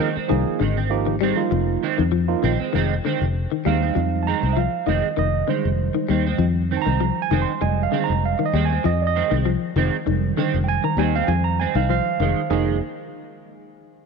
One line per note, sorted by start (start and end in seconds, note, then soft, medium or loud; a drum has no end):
0.00 0.16 D#3 medium
0.00 0.25 D#3 medium
0.00 0.16 G#3 medium
0.00 0.15 C4 medium
0.16 0.34 G#3 soft
0.16 0.33 C4 medium
0.16 muted fingered electric bass stroke soft
0.28 0.44 C2 loud
0.28 0.56 D#3 medium
0.28 0.61 F3 medium
0.28 0.61 A#3 medium
0.28 0.61 D#4 medium
0.28 0.61 G#4 loud
0.48 muted fingered electric bass stroke soft
0.60 1.32 G#1 medium
0.60 0.86 D3 medium
0.60 0.77 D#3 medium
0.60 0.77 G#3 medium
0.60 muted clean electric guitar stroke medium
0.77 0.94 C4 medium
0.90 1.14 F3 loud
0.90 1.14 A#3 medium
0.90 1.15 D#4 medium
0.90 1.15 G4 loud
1.06 1.19 D#3 medium
1.21 1.41 D#3 medium
1.21 1.47 G3 medium
1.21 1.41 G#3 medium
1.21 1.41 C4 medium
1.36 1.83 F3 medium
1.36 1.83 A#3 medium
1.36 1.83 D#4 medium
1.36 1.83 F4 loud
1.51 1.76 F1 loud
1.51 1.78 F3 medium
1.83 2.02 D#3 medium
1.83 2.02 G#3 medium
1.83 2.02 C4 medium
1.98 2.34 F2 medium
1.98 2.11 D#3 medium
2.12 2.39 F3 medium
2.28 2.52 F3 loud
2.28 2.52 A#3 medium
2.28 2.52 D#4 medium
2.28 2.52 F4 medium
2.43 2.56 A#1 loud
2.43 2.69 D#3 medium
2.43 2.60 G#3 medium
2.43 2.58 C4 medium
2.60 2.74 G#3 soft
2.60 2.74 C4 medium
2.60 muted fingered electric bass stroke soft
2.73 2.98 F1 medium
2.73 3.00 D#3 medium
2.73 2.93 D#3 medium
2.73 2.93 G#3 medium
2.73 2.94 C4 medium
3.05 3.31 D3 medium
3.05 3.24 D#3 medium
3.05 3.24 G#3 medium
3.05 3.24 C4 medium
3.21 3.45 F1 medium
3.52 3.64 D#3 medium
3.65 3.90 D#2 medium
3.65 3.82 D#3 soft
3.65 4.53 G3 medium
3.65 3.92 G3 medium
3.65 4.53 G#3 medium
3.65 3.82 G#3 medium
3.65 3.81 C4 medium
3.65 4.53 D#4 medium
3.65 4.25 F5 loud
3.82 4.00 G#3 soft
3.82 3.99 C4 soft
3.95 4.33 F2 loud
3.95 4.22 F3 medium
4.23 4.27 A5 medium
4.27 4.43 D#3 medium
4.27 4.43 G#3 medium
4.27 4.43 C4 medium
4.27 4.56 A#5 loud
4.43 4.67 C2 medium
4.43 4.61 G#3 soft
4.43 4.61 C4 soft
4.53 4.83 F3 medium
4.53 4.57 E5 medium
4.58 4.87 F5 medium
4.87 5.00 F1 medium
4.87 5.13 D#3 medium
4.87 5.07 D#3 medium
4.87 5.07 G#3 medium
4.87 5.08 C4 medium
4.87 5.17 D#5 medium
5.17 5.42 F1 medium
5.17 5.44 D#3 medium
5.17 5.48 D#5 medium
5.48 5.74 D3 medium
5.48 5.68 D#3 medium
5.48 7.89 D#3 medium
5.48 7.59 G3 medium
5.48 7.60 G#3 soft
5.48 5.68 G#3 medium
5.48 6.08 C5 medium
5.48 muted clean electric guitar stroke medium
5.65 5.89 F1 medium
5.95 6.07 D#3 medium
6.08 6.33 D#2 medium
6.08 6.26 D#3 medium
6.08 6.35 G3 medium
6.08 6.26 G#3 medium
6.08 6.25 C4 medium
6.26 6.44 G#3 soft
6.26 6.44 C4 medium
6.38 6.76 F2 loud
6.38 6.66 F3 medium
6.71 6.87 D#3 medium
6.71 6.86 C4 medium
6.71 muted clean electric guitar stroke medium
6.77 6.81 A5 medium
6.82 7.21 A#5 loud
6.86 7.11 C2 medium
6.86 6.99 D#3 medium
6.86 7.05 G#3 soft
6.86 7.04 C4 medium
7.01 7.27 F3 medium
7.22 7.42 G#5 loud
7.31 7.44 F1 medium
7.31 7.58 D#3 medium
7.31 7.51 D#3 medium
7.31 7.51 G#3 medium
7.31 7.51 C4 medium
7.42 7.62 C6 medium
7.61 7.86 F1 medium
7.61 8.49 G3 medium
7.61 8.49 G#3 medium
7.61 8.44 D#5 medium
7.61 7.82 G#5 medium
7.61 muted clean electric guitar stroke medium
7.83 8.03 F5 medium
7.92 8.19 D3 medium
7.92 8.12 D#3 medium
7.92 8.12 G#3 medium
7.92 8.12 C4 medium
8.04 8.23 A#5 medium
8.10 8.33 F1 medium
8.25 8.44 F5 medium
8.39 8.52 D#3 medium
8.45 8.64 D#5 medium
8.53 8.78 D#2 medium
8.53 8.70 D#3 medium
8.53 8.80 G3 medium
8.53 8.71 G#3 medium
8.53 8.70 C4 medium
8.65 8.85 G#5 medium
8.71 8.89 G#3 soft
8.71 8.88 C4 soft
8.84 9.22 F2 loud
8.84 9.11 F3 medium
8.84 9.05 D#5 medium
9.02 9.06 D5 medium
9.07 9.36 D#5 medium
9.16 9.32 D#3 medium
9.16 9.31 G#3 medium
9.16 9.30 C4 medium
9.31 9.55 C2 medium
9.31 9.44 D#3 medium
9.31 9.50 G#3 soft
9.31 9.49 C4 medium
9.45 9.72 F3 medium
9.76 9.89 F1 medium
9.76 9.95 D#3 medium
9.76 10.03 D#3 medium
9.76 9.96 G#3 medium
9.76 9.96 C4 medium
10.06 10.31 F1 medium
10.06 10.33 D#3 medium
10.06 12.48 D#3 medium
10.06 12.47 G3 medium
10.06 12.47 G#3 medium
10.37 10.64 D3 medium
10.37 10.56 D#3 medium
10.37 10.57 G#3 medium
10.37 10.57 C4 medium
10.54 10.78 F1 medium
10.64 10.68 G5 medium
10.68 10.83 G#5 loud
10.84 10.96 D#3 medium
10.84 10.98 A#5 medium
10.97 11.21 D#2 medium
10.97 11.15 D#3 medium
10.97 11.25 G3 medium
10.97 11.15 G#3 medium
10.97 11.14 C4 medium
10.97 11.14 G#5 loud
11.15 11.33 G#3 soft
11.15 11.33 C4 soft
11.15 11.28 F5 loud
11.24 11.28 G5 medium
11.28 11.65 F2 loud
11.28 11.55 F3 medium
11.28 11.44 G#5 loud
11.44 11.58 A#5 medium
11.60 11.77 G#3 medium
11.60 11.75 C4 medium
11.60 11.75 G#5 medium
11.75 11.99 C2 medium
11.75 11.88 D#3 medium
11.75 11.94 G#3 soft
11.75 11.94 C4 medium
11.75 11.89 F5 medium
11.90 12.16 F3 medium
11.90 12.47 C5 medium
11.90 12.50 F5 loud
12.20 12.33 F1 loud
12.20 12.47 D#3 medium
12.20 12.40 D#3 medium
12.20 12.41 G#3 medium
12.20 muted clean electric guitar stroke medium
12.50 12.79 F1 medium
12.50 12.76 D#3 medium
12.50 12.79 F3 medium
12.50 12.77 G#3 medium
12.50 12.79 A#3 medium
12.50 12.79 D#4 medium
12.50 12.79 G#4 medium
12.50 muted clean electric guitar stroke medium